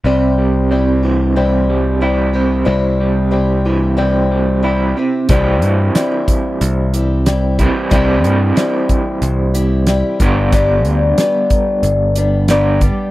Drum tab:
HH |--------|--------|xxxxxxxx|xxxxxxxx|
SD |--------|--------|--o---o-|--o---o-|
BD |--------|--------|o--o---o|o--o---o|

HH |xxxxxxxx|
SD |--o---o-|
BD |o--o---o|